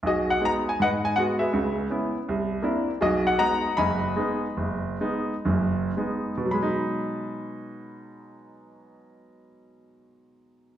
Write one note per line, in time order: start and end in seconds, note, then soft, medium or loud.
0.03 0.36 B1 medium
0.03 0.77 F#4 medium
0.03 0.77 G#4 medium
0.07 0.29 D#5 medium
0.30 0.42 F#5 medium
0.41 0.68 G#3 soft
0.41 0.68 B3 soft
0.41 0.68 D#4 soft
0.45 0.51 A#5 medium
0.69 0.81 G#5 medium
0.80 1.12 G#2 medium
0.80 1.39 B4 medium
0.80 1.52 D#5 medium
0.80 0.87 F#5 medium
1.05 1.17 G#5 medium
1.16 1.43 G#3 soft
1.16 1.43 B3 soft
1.16 1.44 F#4 soft
1.16 1.22 F#5 medium
1.39 2.11 G#4 soft
1.39 2.11 B4 soft
1.39 1.75 E5 medium
1.53 1.86 C#2 medium
1.53 1.86 C#3 medium
1.90 2.17 B3 soft
1.90 2.17 C#4 soft
1.90 2.17 E4 soft
2.29 2.61 C2 medium
2.62 2.89 A#3 soft
2.62 2.90 C4 soft
2.62 2.90 D4 soft
2.62 2.90 E4 soft
3.01 3.35 B1 medium
3.01 3.74 F#4 medium
3.01 3.73 G#4 medium
3.01 3.25 D#5 medium
3.27 3.37 F#5 medium
3.39 3.66 G#3 soft
3.39 3.66 B3 soft
3.39 3.66 D#4 soft
3.39 3.77 D#5 medium
3.39 4.13 F#5 medium
3.39 3.79 A#5 medium
3.77 4.12 F#1 medium
3.77 4.12 F#2 medium
3.77 5.94 D#5 medium
3.77 5.94 G#5 medium
3.77 5.93 B5 medium
4.16 4.45 G#3 soft
4.16 4.45 B3 soft
4.16 4.46 D#4 soft
4.57 4.95 F#1 medium
5.01 5.33 G#3 soft
5.01 5.33 B3 soft
5.01 5.33 D#4 medium
5.45 5.90 F#1 medium
5.45 5.89 F#2 medium
5.97 6.34 G#3 soft
5.97 6.34 B3 soft
5.97 6.35 D#4 soft
6.37 10.77 B2 soft
6.45 10.77 F#3 soft
6.51 10.77 G#3 soft
6.51 10.77 B5 medium
6.63 10.77 D#4 medium